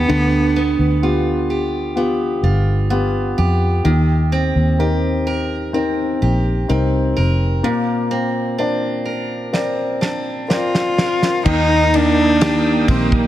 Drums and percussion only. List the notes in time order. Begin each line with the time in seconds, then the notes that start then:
9.54 snare
10.02 snare
10.50 snare
10.75 snare
10.98 snare
11.22 snare
11.45 kick, crash
11.94 ride
12.41 snare, ride
12.88 kick, ride
13.12 kick